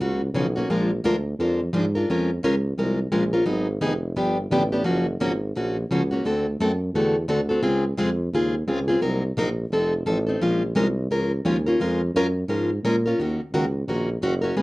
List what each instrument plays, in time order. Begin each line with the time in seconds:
0.00 tuba C#2, steel-string acoustic guitar C#3 F3 A#3 C#4 F#4
0.33 tuba B1, steel-string acoustic guitar C#3 F3 A#3 C#4 F#4
0.55 steel-string acoustic guitar A#3 C#4 F#4
0.68 tuba A#1, steel-string acoustic guitar F3 G#3 D4 F4 A#4
1.04 tuba D2, steel-string acoustic guitar F3 G#3 D4 F4 A#4
1.39 tuba F2, steel-string acoustic guitar F3 G#3 D4 F4 A#4
1.73 tuba G#2, steel-string acoustic guitar F3 G#3 D4 F4 A#4
1.95 steel-string acoustic guitar D4 F4 A#4
2.09 tuba F2, steel-string acoustic guitar F3 G#3 C#4 F4 A#4
2.42 tuba C#2, steel-string acoustic guitar F3 G#3 C#4 F4 A#4
2.77 tuba C2, steel-string acoustic guitar F3 G#3 C#4 F4 A#4
3.11 tuba A#1, steel-string acoustic guitar F3 G#3 C#4 F4 A#4
3.33 steel-string acoustic guitar C#4 F4 A#4
3.45 tuba G#1, steel-string acoustic guitar D#3 F#3 B3 D#4 G#4
3.81 tuba F1, steel-string acoustic guitar D#3 F#3 B3 D#4 G#4
4.16 tuba G1, steel-string acoustic guitar D3 F3 B3 D4 G4
4.50 tuba A1, steel-string acoustic guitar D3 F3 B3 D4 G4
4.72 steel-string acoustic guitar B3 D4 G4
4.85 tuba F#1, steel-string acoustic guitar C#3 F3 A#3 C#4 F#4
5.21 tuba G#1, steel-string acoustic guitar C#3 F3 A#3 C#4 F#4
5.56 tuba A#1, steel-string acoustic guitar C#3 F3 A#3 C#4 F#4
5.90 tuba C#2, steel-string acoustic guitar C#3 F3 A#3 C#4 F#4
6.11 steel-string acoustic guitar A#3 C#4 F#4
6.25 tuba D2, steel-string acoustic guitar D3 A3 C4 F#4 A4
6.60 tuba F#2, steel-string acoustic guitar D3 A3 C4 F#4 A4
6.94 tuba E2, steel-string acoustic guitar D3 A3 C4 F#4 A4
7.28 tuba D2, steel-string acoustic guitar D3 A3 C4 F#4 A4
7.49 steel-string acoustic guitar C4 F#4 A4
7.63 tuba C#2, steel-string acoustic guitar C#3 G#3 C4 F4 G#4
7.97 tuba F2, steel-string acoustic guitar C#3 G#3 C4 F4 G#4
8.33 tuba D#2, steel-string acoustic guitar C#3 G#3 C4 F4 G#4
8.67 tuba C#2, steel-string acoustic guitar C#3 G#3 C4 F4 G#4
8.88 steel-string acoustic guitar C4 F4 G#4
9.01 tuba C2, steel-string acoustic guitar C3 F#3 A#3 D#4 A#4
9.36 tuba A#1, steel-string acoustic guitar C3 F#3 A#3 D#4 A#4
9.70 tuba F1, steel-string acoustic guitar F3 C4 D#4 A4
10.06 tuba A1, steel-string acoustic guitar F3 C4 D#4 A4
10.27 steel-string acoustic guitar C4 D#4 A4
10.40 tuba A#1, steel-string acoustic guitar F3 G#3 C#4 F4 A#4
10.75 tuba C2, steel-string acoustic guitar F3 G#3 C#4 F4 A#4
11.10 tuba C#2, steel-string acoustic guitar F3 G#3 C#4 F4 A#4
11.44 tuba D#2, steel-string acoustic guitar F3 G#3 C#4 F4 A#4
11.66 steel-string acoustic guitar C#4 F4 A#4
11.79 tuba F2, steel-string acoustic guitar F3 G#3 C#4 F4 A#4
12.14 tuba F#2, steel-string acoustic guitar F3 G#3 C#4 F4 A#4
12.48 tuba G#2, steel-string acoustic guitar F3 G#3 C#4 F4 A#4
12.83 tuba A#2, steel-string acoustic guitar F3 G#3 C#4 F4 A#4
13.06 steel-string acoustic guitar C#4 F4 A#4
13.18 tuba D#2, steel-string acoustic guitar D#3 A#3 C#4 F#4 A#4
13.52 tuba C#2, steel-string acoustic guitar D#3 A#3 C#4 F#4 A#4
13.87 tuba A#1, steel-string acoustic guitar D#3 A#3 C#4 F#4 A#4
14.22 tuba F#1, steel-string acoustic guitar D#3 A#3 C#4 F#4 A#4
14.42 steel-string acoustic guitar C#4 F#4 A#4
14.56 tuba C#2, steel-string acoustic guitar C#3 G#3 B3 F4 G#4